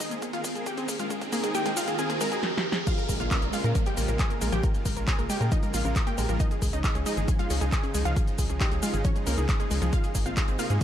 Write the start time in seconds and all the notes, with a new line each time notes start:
Already playing: riser
0.00 D#3 C4 D#4 G#4 A#4 D#5, kick, open hi-hat, shaker
0.11 A#3 G#4, closed hi-hat, shaker
0.22 D#3 C4 G#4 A#4, kick, closed hi-hat, shaker
0.33 D#3 A#3 C4 F4 G#4 A#4 F5, closed hi-hat, shaker
0.44 G#3 G#4, kick, open hi-hat, shaker
0.55 D#3 C4 G#4 A#4, closed hi-hat, shaker
0.66 G4 G#4 G5, kick, closed hi-hat, shaker
0.77 D#3 C4 G#4 A#4, closed hi-hat, shaker
0.88 A#3 G#4, kick, open hi-hat, shaker
0.99 D#3 G#3 C4 F4 G#4 A#4 F5, closed hi-hat, shaker
1.10 D#3 G#3 C4 G#4 A#4, kick, closed hi-hat, shaker
1.21 kick, closed hi-hat, shaker
1.32 D#3 A#3 C4 G#4 A#4, kick, open hi-hat, shaker
1.44 G#3 G#4, kick, closed hi-hat, shaker
1.55 D#3 A#3 C4 G4 G#4 A#4 G5, kick, closed hi-hat, shaker
1.66 G#3 G#4, kick, closed hi-hat, shaker
1.77 D#3 C4 F4 G#4 A#4 F5, kick, open hi-hat, shaker
1.88 A#3 G#4, kick, closed hi-hat, shaker
1.99 D#3 C4 G#4 A#4 G#5, kick, closed hi-hat, shaker
2.10 D#3 A#3 C4 G#4 A#4, kick, closed hi-hat, shaker
2.21 G#3 A#4 A#5, kick, open hi-hat, shaker
2.32 D#3 C4 G#4 A#4, kick, closed hi-hat, shaker
2.43 snare
2.58 snare
2.72 snare
2.87 C#3 F3 G#3 A#3 F4 F5, kick, closed hi-hat, crash, downlifter, shaker
2.98 A#4, closed hi-hat, shaker
3.09 A#1 C#3 G#3 A#3 F4 A#4, kick, open hi-hat, shaker
3.20 A#1 A#3 F4 F5, closed hi-hat, shaker
3.31 C#3 G#3 A#3 C#4 F4 A#4, kick, clap, closed hi-hat, shaker
3.42 A#1 A#3 A#4, closed hi-hat, shaker
3.53 C#3 G#3 A#3 F4 F5, open hi-hat, shaker
3.64 A#2 A#4, closed hi-hat, shaker
3.75 C#3 F3 G#3 A#3 F4 A#4, kick, closed hi-hat, shaker
3.86 C#3 G#3 A#3 F4 G4 G5, closed hi-hat, shaker
3.97 A#1 A#3 A#4, open hi-hat, shaker
4.08 A#1 C#3 G#3 A#3 C#4 F4 A#4, closed hi-hat, shaker
4.19 G#4 G#5, kick, clap, closed hi-hat, shaker
4.30 C#3 G#3 A#3 F4 A#4, closed hi-hat, shaker
4.41 A#1 G#3 A#4, open hi-hat, shaker
4.52 A#1 C#3 F3 G#3 A#3 F4 G4 G5, closed hi-hat, shaker
4.63 C#3 G#3 A#3 F4 A#4, kick, closed hi-hat, shaker
4.75 closed hi-hat, shaker
4.85 A#1 C#3 G#3 A#3 F4 A#4, kick, open hi-hat, shaker
4.96 A#1 A#3 A#4, closed hi-hat, shaker
5.07 C#3 G#3 A#3 C#4 F4 G#4 G#5, kick, clap, closed hi-hat, shaker
5.19 A#1 A#3 A#4, closed hi-hat, shaker
5.30 C#3 G#3 A#3 F4 G4 G5, open hi-hat, shaker
5.41 A#2 A#4, closed hi-hat, shaker
5.52 C#3 F3 G#3 A#3 D#4 F4 D#5, kick, closed hi-hat, shaker
5.63 C#3 G#3 A#3 F4 A#4, closed hi-hat, shaker
5.74 A#1 A#3 F4 F5, open hi-hat, shaker
5.85 A#1 C#3 G#3 A#3 C#4 F4 A#4, closed hi-hat, shaker
5.96 A#4, kick, clap, closed hi-hat, shaker
6.07 C#3 G#3 A#3 F4 G4 G5, closed hi-hat, shaker
6.18 A#1 G#3 A#4, open hi-hat, shaker
6.29 A#1 C#3 F3 G#3 A#3 F4 A#4, closed hi-hat, shaker
6.40 C#3 F3 G#3 D#4 D#5, kick, closed hi-hat, shaker
6.51 G#4, closed hi-hat, shaker
6.62 C#2 C#3 F3 G#3 D#4 G#4, kick, open hi-hat, shaker
6.73 C#2 C#4 D#4 D#5, closed hi-hat, shaker
6.84 C#3 F3 G#3 D#4 G#4, kick, clap, closed hi-hat, shaker
6.95 C#2 C#4 G#4, closed hi-hat, shaker
7.06 C#3 F3 G#3 D#4 D#5, open hi-hat, shaker
7.17 G#1 G#4, closed hi-hat, shaker
7.28 C#3 F3 G#3 D#4 G#4, kick, closed hi-hat, shaker
7.39 C#3 F3 G#3 D#4 F4 F5, closed hi-hat, shaker
7.50 C#2 C#4 G#4, open hi-hat, shaker
7.61 C#2 C#3 F3 G#3 D#4 G#4, closed hi-hat, shaker
7.72 G#4 G#5, kick, clap, closed hi-hat, shaker
7.83 C#3 F3 G#3 C#4 D#4 G#4, closed hi-hat, shaker
7.94 C#2 G#3 G#4, open hi-hat, shaker
8.05 C#2 C#3 F3 G#3 D#4 F4 F5, closed hi-hat, shaker
8.16 C#3 F3 G#3 D#4 G#4, kick, closed hi-hat, shaker
8.28 closed hi-hat, shaker
8.38 C#2 C#3 F3 G#3 D#4 G#4, kick, open hi-hat, shaker
8.49 C#2 C#4 G#4, closed hi-hat, shaker
8.60 C#3 F3 G#3 D#4 G4 G5, kick, clap, closed hi-hat, shaker
8.72 C#2 C#4 G#4, closed hi-hat, shaker
8.83 C#3 F3 G#3 D#4 F4 F5, open hi-hat, shaker
8.94 G#1 G#4, closed hi-hat, shaker
9.05 C#3 F3 G#3 C#4 D#4 C#5, kick, closed hi-hat, shaker
9.16 C#3 F3 G#3 D#4 G#4, closed hi-hat, shaker
9.27 C#2 A#3 C#4 A#4, open hi-hat, shaker
9.38 C#2 C#3 F3 G#3 D#4 G#4, closed hi-hat, shaker
9.49 G#4, kick, clap, closed hi-hat, shaker
9.60 C#3 F3 G#3 C#4 D#4 G#4, closed hi-hat, shaker
9.71 C#2 G#3 G#4, open hi-hat, shaker
9.82 C#2 C#3 F3 G#3 D#4 G#4, closed hi-hat, shaker
9.93 C3 G#3 A#3 D#4 F4 F5, kick, closed hi-hat, shaker
10.04 G#4, closed hi-hat, shaker
10.15 G#1 C3 G#3 A#3 D#4 G#4, kick, open hi-hat, shaker
10.26 G#1 C4 F4 F5, closed hi-hat, shaker
10.37 C3 G#3 A#3 D#4 G#4, kick, clap, closed hi-hat, shaker
10.48 G#1 C4 G#4, closed hi-hat, shaker
10.59 C3 G#3 A#3 D#4 F4 F5, open hi-hat, shaker
10.70 G#2 G#4, closed hi-hat, shaker